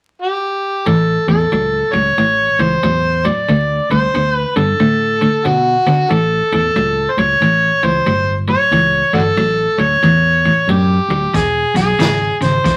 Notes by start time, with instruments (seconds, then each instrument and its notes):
0.22 harmonica G4
0.86 fingered electric bass A1, clean electric guitar A2 E3, harmonica A4
1.27 fingered electric bass E2, clean electric guitar A2 E3, harmonica A4
1.52 fingered electric bass C#2, clean electric guitar A2 F#3
1.93 fingered electric bass C#2, clean electric guitar A2 F#3, harmonica C#5
2.18 fingered electric bass A1, clean electric guitar A2 E3
2.59 fingered electric bass C#2, clean electric guitar A2 E3, harmonica C5
2.83 fingered electric bass E2, clean electric guitar A2 F#3
3.25 clean electric guitar A2 F#3, harmonica D5
3.48 fingered electric bass D2, clean electric guitar D3 A3
3.90 fingered electric bass C2, clean electric guitar D3 A3, harmonica C5
4.14 fingered electric bass D2, clean electric guitar D3 B3
4.34 harmonica B4
4.56 fingered electric bass G2, clean electric guitar D3 B3, harmonica A4
4.80 fingered electric bass A2, clean electric guitar D3 A3
5.21 clean electric guitar D3 A3
5.45 fingered electric bass B2, clean electric guitar D3 B3, harmonica F#4
5.86 fingered electric bass D3, clean electric guitar D3 B3
6.10 fingered electric bass A1, clean electric guitar A2 E3, harmonica A4
6.52 fingered electric bass E2, clean electric guitar A2 E3, harmonica A4
6.76 fingered electric bass C#2, clean electric guitar A2 F#3
7.11 harmonica C5
7.17 fingered electric bass C#2, clean electric guitar A2 F#3, harmonica C#5
7.41 fingered electric bass A1, clean electric guitar A2 E3
7.83 fingered electric bass C#2, clean electric guitar A2 E3, harmonica C5
8.06 fingered electric bass G1, clean electric guitar A2 F#3
8.48 clean electric guitar A2 F#3, harmonica C#5
8.71 fingered electric bass C#2, clean electric guitar A2 E3
9.13 fingered electric bass G1, clean electric guitar A2 E3, harmonica D4 F#4 A4
9.36 fingered electric bass A1, clean electric guitar A2 F#3
9.78 fingered electric bass D2, clean electric guitar A2 F#3, harmonica C#5
10.03 fingered electric bass E2, clean electric guitar A2 E3
10.45 clean electric guitar A2 E3
10.67 fingered electric bass F#2, clean electric guitar A2 F#3, harmonica G4
11.08 fingered electric bass D2, clean electric guitar A2 F#3
11.34 fingered electric bass E1, clean electric guitar E2 B2, harmonica G#4, kick, snare, closed hi-hat
11.74 fingered electric bass B1, clean electric guitar E2 B2, harmonica G#4, snare, closed hi-hat
11.99 fingered electric bass G#1, clean electric guitar E2 C#3, snare, closed hi-hat
12.41 fingered electric bass G#1, clean electric guitar E2 C#3, harmonica C5, snare, closed hi-hat
12.64 fingered electric bass E1, clean electric guitar E2 B2, kick, snare, closed hi-hat